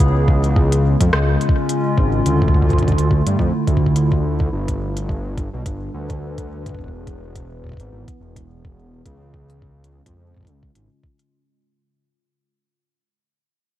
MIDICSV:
0, 0, Header, 1, 4, 480
1, 0, Start_track
1, 0, Time_signature, 4, 2, 24, 8
1, 0, Tempo, 566038
1, 11696, End_track
2, 0, Start_track
2, 0, Title_t, "Ambient pad"
2, 0, Program_c, 0, 92
2, 0, Note_on_c, 0, 49, 72
2, 0, Note_on_c, 0, 59, 79
2, 0, Note_on_c, 0, 68, 73
2, 82, Note_on_c, 0, 56, 67
2, 692, Note_on_c, 0, 65, 85
2, 711, Note_on_c, 0, 61, 81
2, 771, Note_off_c, 0, 59, 0
2, 771, Note_off_c, 0, 68, 0
2, 1917, Note_off_c, 0, 49, 0
2, 1917, Note_off_c, 0, 56, 0
2, 1917, Note_on_c, 0, 50, 81
2, 1981, Note_on_c, 0, 57, 85
2, 2507, Note_on_c, 0, 64, 87
2, 2591, Note_off_c, 0, 61, 0
2, 3837, Note_off_c, 0, 50, 0
2, 3837, Note_off_c, 0, 57, 0
2, 3837, Note_on_c, 0, 55, 71
2, 4170, Note_on_c, 0, 62, 81
2, 4456, Note_on_c, 0, 71, 75
2, 4507, Note_on_c, 0, 69, 75
2, 4610, Note_off_c, 0, 64, 0
2, 4611, Note_off_c, 0, 65, 0
2, 5757, Note_off_c, 0, 55, 0
2, 5758, Note_off_c, 0, 69, 0
2, 5758, Note_on_c, 0, 52, 67
2, 5977, Note_on_c, 0, 64, 70
2, 5994, Note_on_c, 0, 59, 84
2, 6531, Note_off_c, 0, 62, 0
2, 6531, Note_off_c, 0, 71, 0
2, 6633, Note_on_c, 0, 68, 77
2, 7677, Note_off_c, 0, 52, 0
2, 7677, Note_off_c, 0, 64, 0
2, 7677, Note_on_c, 0, 49, 74
2, 7868, Note_on_c, 0, 56, 74
2, 7906, Note_on_c, 0, 61, 81
2, 8450, Note_off_c, 0, 59, 0
2, 8451, Note_off_c, 0, 68, 0
2, 8551, Note_on_c, 0, 65, 61
2, 9596, Note_off_c, 0, 65, 0
2, 9597, Note_off_c, 0, 49, 0
2, 9597, Note_off_c, 0, 56, 0
2, 9597, Note_off_c, 0, 61, 0
2, 11696, End_track
3, 0, Start_track
3, 0, Title_t, "Detuned saw bass"
3, 0, Program_c, 1, 39
3, 0, Note_on_c, 1, 37, 90
3, 812, Note_off_c, 1, 37, 0
3, 851, Note_on_c, 1, 41, 83
3, 938, Note_off_c, 1, 41, 0
3, 957, Note_on_c, 1, 37, 89
3, 1159, Note_off_c, 1, 37, 0
3, 1677, Note_on_c, 1, 32, 82
3, 1878, Note_off_c, 1, 32, 0
3, 1917, Note_on_c, 1, 38, 87
3, 2732, Note_off_c, 1, 38, 0
3, 2771, Note_on_c, 1, 43, 84
3, 2858, Note_off_c, 1, 43, 0
3, 2877, Note_on_c, 1, 41, 95
3, 2987, Note_off_c, 1, 41, 0
3, 3117, Note_on_c, 1, 38, 86
3, 3806, Note_off_c, 1, 38, 0
3, 3837, Note_on_c, 1, 31, 89
3, 4652, Note_off_c, 1, 31, 0
3, 4691, Note_on_c, 1, 35, 84
3, 4778, Note_off_c, 1, 35, 0
3, 4797, Note_on_c, 1, 31, 87
3, 4998, Note_off_c, 1, 31, 0
3, 5037, Note_on_c, 1, 38, 94
3, 5726, Note_off_c, 1, 38, 0
3, 5757, Note_on_c, 1, 28, 88
3, 6572, Note_off_c, 1, 28, 0
3, 6611, Note_on_c, 1, 32, 87
3, 6698, Note_off_c, 1, 32, 0
3, 6717, Note_on_c, 1, 32, 91
3, 6827, Note_off_c, 1, 32, 0
3, 6957, Note_on_c, 1, 28, 85
3, 7646, Note_off_c, 1, 28, 0
3, 7677, Note_on_c, 1, 37, 91
3, 8492, Note_off_c, 1, 37, 0
3, 8532, Note_on_c, 1, 41, 82
3, 8878, Note_on_c, 1, 37, 81
3, 8890, Note_off_c, 1, 41, 0
3, 9079, Note_off_c, 1, 37, 0
3, 9118, Note_on_c, 1, 32, 78
3, 9227, Note_off_c, 1, 32, 0
3, 11696, End_track
4, 0, Start_track
4, 0, Title_t, "Drums"
4, 0, Note_on_c, 9, 36, 105
4, 0, Note_on_c, 9, 42, 90
4, 82, Note_off_c, 9, 36, 0
4, 82, Note_off_c, 9, 42, 0
4, 237, Note_on_c, 9, 36, 104
4, 322, Note_off_c, 9, 36, 0
4, 371, Note_on_c, 9, 42, 48
4, 456, Note_off_c, 9, 42, 0
4, 477, Note_on_c, 9, 36, 118
4, 562, Note_off_c, 9, 36, 0
4, 611, Note_on_c, 9, 42, 72
4, 696, Note_off_c, 9, 42, 0
4, 851, Note_on_c, 9, 36, 101
4, 852, Note_on_c, 9, 42, 90
4, 936, Note_off_c, 9, 36, 0
4, 936, Note_off_c, 9, 42, 0
4, 957, Note_on_c, 9, 37, 117
4, 1042, Note_off_c, 9, 37, 0
4, 1197, Note_on_c, 9, 42, 49
4, 1264, Note_on_c, 9, 36, 113
4, 1282, Note_off_c, 9, 42, 0
4, 1349, Note_off_c, 9, 36, 0
4, 1437, Note_on_c, 9, 42, 88
4, 1521, Note_off_c, 9, 42, 0
4, 1677, Note_on_c, 9, 36, 102
4, 1762, Note_off_c, 9, 36, 0
4, 1917, Note_on_c, 9, 42, 82
4, 2001, Note_off_c, 9, 42, 0
4, 2051, Note_on_c, 9, 36, 92
4, 2104, Note_off_c, 9, 36, 0
4, 2104, Note_on_c, 9, 36, 78
4, 2157, Note_off_c, 9, 36, 0
4, 2157, Note_on_c, 9, 36, 61
4, 2224, Note_off_c, 9, 36, 0
4, 2224, Note_on_c, 9, 36, 50
4, 2291, Note_off_c, 9, 36, 0
4, 2291, Note_on_c, 9, 36, 48
4, 2291, Note_on_c, 9, 42, 21
4, 2317, Note_off_c, 9, 36, 0
4, 2317, Note_on_c, 9, 36, 55
4, 2362, Note_off_c, 9, 36, 0
4, 2362, Note_off_c, 9, 42, 0
4, 2362, Note_on_c, 9, 36, 69
4, 2362, Note_on_c, 9, 42, 30
4, 2397, Note_off_c, 9, 36, 0
4, 2397, Note_on_c, 9, 36, 80
4, 2442, Note_off_c, 9, 36, 0
4, 2442, Note_off_c, 9, 42, 0
4, 2442, Note_on_c, 9, 36, 87
4, 2442, Note_on_c, 9, 42, 35
4, 2477, Note_off_c, 9, 36, 0
4, 2477, Note_on_c, 9, 36, 99
4, 2527, Note_off_c, 9, 42, 0
4, 2531, Note_on_c, 9, 42, 69
4, 2562, Note_off_c, 9, 36, 0
4, 2616, Note_off_c, 9, 42, 0
4, 2637, Note_on_c, 9, 36, 97
4, 2722, Note_off_c, 9, 36, 0
4, 2771, Note_on_c, 9, 42, 86
4, 2856, Note_off_c, 9, 42, 0
4, 2877, Note_on_c, 9, 36, 97
4, 2962, Note_off_c, 9, 36, 0
4, 3117, Note_on_c, 9, 36, 103
4, 3117, Note_on_c, 9, 42, 45
4, 3197, Note_off_c, 9, 36, 0
4, 3197, Note_on_c, 9, 36, 82
4, 3202, Note_off_c, 9, 42, 0
4, 3277, Note_off_c, 9, 36, 0
4, 3277, Note_on_c, 9, 36, 71
4, 3357, Note_on_c, 9, 42, 83
4, 3362, Note_off_c, 9, 36, 0
4, 3442, Note_off_c, 9, 42, 0
4, 3491, Note_on_c, 9, 36, 97
4, 3576, Note_off_c, 9, 36, 0
4, 3732, Note_on_c, 9, 36, 100
4, 3816, Note_off_c, 9, 36, 0
4, 3971, Note_on_c, 9, 36, 103
4, 3972, Note_on_c, 9, 42, 70
4, 4056, Note_off_c, 9, 36, 0
4, 4056, Note_off_c, 9, 42, 0
4, 4212, Note_on_c, 9, 42, 82
4, 4296, Note_off_c, 9, 42, 0
4, 4317, Note_on_c, 9, 36, 94
4, 4402, Note_off_c, 9, 36, 0
4, 4557, Note_on_c, 9, 36, 96
4, 4557, Note_on_c, 9, 42, 48
4, 4642, Note_off_c, 9, 36, 0
4, 4642, Note_off_c, 9, 42, 0
4, 4797, Note_on_c, 9, 36, 106
4, 4797, Note_on_c, 9, 42, 76
4, 4882, Note_off_c, 9, 36, 0
4, 4882, Note_off_c, 9, 42, 0
4, 5171, Note_on_c, 9, 36, 96
4, 5171, Note_on_c, 9, 42, 49
4, 5256, Note_off_c, 9, 36, 0
4, 5256, Note_off_c, 9, 42, 0
4, 5411, Note_on_c, 9, 36, 95
4, 5411, Note_on_c, 9, 42, 70
4, 5496, Note_off_c, 9, 36, 0
4, 5496, Note_off_c, 9, 42, 0
4, 5651, Note_on_c, 9, 36, 100
4, 5652, Note_on_c, 9, 42, 77
4, 5677, Note_off_c, 9, 36, 0
4, 5677, Note_on_c, 9, 36, 82
4, 5722, Note_off_c, 9, 36, 0
4, 5722, Note_on_c, 9, 36, 69
4, 5736, Note_off_c, 9, 42, 0
4, 5757, Note_off_c, 9, 36, 0
4, 5757, Note_on_c, 9, 36, 55
4, 5802, Note_off_c, 9, 36, 0
4, 5802, Note_on_c, 9, 36, 47
4, 5837, Note_off_c, 9, 36, 0
4, 5837, Note_on_c, 9, 36, 39
4, 5922, Note_off_c, 9, 36, 0
4, 5997, Note_on_c, 9, 36, 93
4, 5997, Note_on_c, 9, 42, 51
4, 6082, Note_off_c, 9, 36, 0
4, 6082, Note_off_c, 9, 42, 0
4, 6237, Note_on_c, 9, 36, 93
4, 6237, Note_on_c, 9, 42, 83
4, 6322, Note_off_c, 9, 36, 0
4, 6322, Note_off_c, 9, 42, 0
4, 6477, Note_on_c, 9, 36, 47
4, 6499, Note_off_c, 9, 36, 0
4, 6499, Note_on_c, 9, 36, 56
4, 6522, Note_off_c, 9, 36, 0
4, 6522, Note_on_c, 9, 36, 66
4, 6544, Note_off_c, 9, 36, 0
4, 6544, Note_on_c, 9, 36, 74
4, 6557, Note_off_c, 9, 36, 0
4, 6557, Note_on_c, 9, 36, 84
4, 6589, Note_off_c, 9, 36, 0
4, 6589, Note_on_c, 9, 36, 88
4, 6611, Note_on_c, 9, 42, 48
4, 6674, Note_off_c, 9, 36, 0
4, 6696, Note_off_c, 9, 42, 0
4, 6851, Note_on_c, 9, 36, 93
4, 6852, Note_on_c, 9, 42, 69
4, 6936, Note_off_c, 9, 36, 0
4, 6936, Note_off_c, 9, 42, 0
4, 7091, Note_on_c, 9, 36, 91
4, 7092, Note_on_c, 9, 42, 84
4, 7176, Note_off_c, 9, 36, 0
4, 7177, Note_off_c, 9, 42, 0
4, 7332, Note_on_c, 9, 36, 105
4, 7416, Note_off_c, 9, 36, 0
4, 7677, Note_on_c, 9, 36, 91
4, 7677, Note_on_c, 9, 42, 87
4, 7762, Note_off_c, 9, 36, 0
4, 7762, Note_off_c, 9, 42, 0
4, 7917, Note_on_c, 9, 36, 91
4, 8002, Note_off_c, 9, 36, 0
4, 8052, Note_on_c, 9, 42, 48
4, 8137, Note_off_c, 9, 42, 0
4, 8157, Note_on_c, 9, 36, 103
4, 8242, Note_off_c, 9, 36, 0
4, 8345, Note_on_c, 9, 42, 70
4, 8430, Note_off_c, 9, 42, 0
4, 8532, Note_on_c, 9, 36, 91
4, 8532, Note_on_c, 9, 42, 83
4, 8617, Note_off_c, 9, 36, 0
4, 8617, Note_off_c, 9, 42, 0
4, 8772, Note_on_c, 9, 36, 40
4, 8789, Note_off_c, 9, 36, 0
4, 8789, Note_on_c, 9, 36, 49
4, 8797, Note_off_c, 9, 36, 0
4, 8797, Note_on_c, 9, 36, 54
4, 8825, Note_off_c, 9, 36, 0
4, 8825, Note_on_c, 9, 36, 63
4, 8842, Note_off_c, 9, 36, 0
4, 8842, Note_on_c, 9, 36, 69
4, 8860, Note_off_c, 9, 36, 0
4, 8860, Note_on_c, 9, 36, 76
4, 8878, Note_on_c, 9, 42, 47
4, 8944, Note_off_c, 9, 36, 0
4, 8963, Note_off_c, 9, 42, 0
4, 9012, Note_on_c, 9, 36, 101
4, 9096, Note_off_c, 9, 36, 0
4, 9118, Note_on_c, 9, 42, 81
4, 9203, Note_off_c, 9, 42, 0
4, 9357, Note_on_c, 9, 36, 92
4, 9442, Note_off_c, 9, 36, 0
4, 9492, Note_on_c, 9, 42, 46
4, 9577, Note_off_c, 9, 42, 0
4, 11696, End_track
0, 0, End_of_file